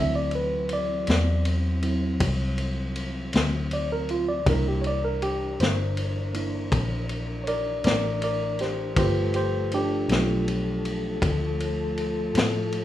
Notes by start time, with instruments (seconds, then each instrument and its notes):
Already playing: fingered electric bass D2, tonewheel organ E3 F#3 C4, tine electric piano F#3 C4 E4 E5
0.15 tine electric piano D5
0.31 ride
0.35 tine electric piano B4
0.69 ride
0.73 tine electric piano D5
1.07 fingered electric bass E2, snare, ride
1.45 ride
1.82 tine electric piano F#3 C4 E4, ride
2.20 fingered electric bass C2, kick, ride
2.58 ride
2.96 ride
3.33 fingered electric bass D2, snare, ride
3.71 tine electric piano D5, ride
3.92 tine electric piano A#4
4.09 tine electric piano F4, ride
4.28 tine electric piano D5
4.46 fingered electric bass C2, tonewheel organ E3 D4 A#4, tine electric piano A#3 D4 E4 A#4, kick, ride
4.68 tine electric piano G4
4.82 tine electric piano C#5, ride
4.87 tine electric piano D5
5.05 tine electric piano A#4
5.22 tine electric piano G4, ride
5.60 fingered electric bass G1, tine electric piano C5, snare, ride
5.97 ride
6.33 tine electric piano A#3 D4 E4, ride
6.71 fingered electric bass A#1, kick, ride
7.09 ride
7.44 tine electric piano A#4 C#5, ride
7.48 tine electric piano D5
7.84 fingered electric bass A1, tine electric piano A#4 D5, snare, ride
8.22 tine electric piano A#4 D5, ride
8.59 tine electric piano G4 C5, snare, ride
8.96 fingered electric bass G1, tonewheel organ F3 A3 A4, tine electric piano A3 F4 G4 B4 C5, kick, ride
9.34 tine electric piano G4 C5, ride
9.72 tine electric piano D4 G4, ride
10.08 fingered electric bass B1, tine electric piano A3 B3 F4, snare, ride
10.48 ride
10.85 ride
11.22 fingered electric bass D2, kick, ride
11.60 ride
11.97 ride
12.34 fingered electric bass A2, snare, ride
12.72 ride